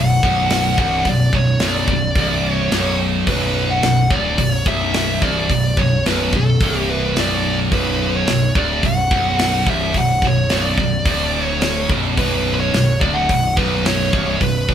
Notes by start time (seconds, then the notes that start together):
Already playing: B0 B1 F#5
0.22 B0 B1, kick
0.50 snare, open hi-hat
0.77 C1 C2 F#5, kick
1.05 B0 B1 D5, kick, open hi-hat
1.33 B0 B1 C#5, kick
1.59 B0 B1, snare, open hi-hat
1.65 D5
1.87 B0, kick
1.91 B1
2.15 C1 C2, kick, open hi-hat
2.52 C#5
2.71 B0 B1, snare, open hi-hat
3.27 B0 B1 B4, kick, open hi-hat
3.70 F#5
3.82 B0 B1, snare, open hi-hat
4.10 D1 D2 D5, kick
4.38 B0 B1, kick, open hi-hat
4.53 C#5
4.66 B0 B1 E5, kick
4.94 snare, open hi-hat
5.22 C1 C2 D5, kick
5.49 B0 B1, kick, open hi-hat
5.77 B0 B1 C#5, kick
6.05 B0 B1 B4, snare, open hi-hat
6.33 B0 B1 A4, kick
6.60 C1 C2, kick, open hi-hat
6.80 G4
6.90 B4
7.16 B0 B1 D5, snare, open hi-hat
7.71 B0 B1 B4, kick, open hi-hat
8.17 C#5
8.27 B0 B1, snare, open hi-hat
8.55 D1 D2, kick
8.59 D5
8.83 B0 B1 F#5, kick, open hi-hat
9.10 B0 B1, kick
9.39 snare, open hi-hat
9.67 C1 C2 E5, kick
9.94 B0 B1, kick, open hi-hat
9.98 F#5
10.21 B0 B1, kick
10.28 C#5
10.49 B0 B1, snare, open hi-hat
10.57 D5
10.78 B0 B1, kick
11.05 D1 D2, kick, open hi-hat
11.43 C#5
11.61 snare, open hi-hat
11.90 B0 B1, kick
12.17 B0 B1 B4, kick, open hi-hat
12.54 B4
12.60 C#5
12.72 B0 B1, snare, open hi-hat
13.01 D1 D2 D5, kick
13.14 F#5
13.29 B0 B1, kick, open hi-hat
13.57 B0 B1 B4, kick
13.85 C#5, snare, open hi-hat
14.13 C1 C2, kick
14.41 B0 B1 B4, kick, open hi-hat
14.68 B0 B1, kick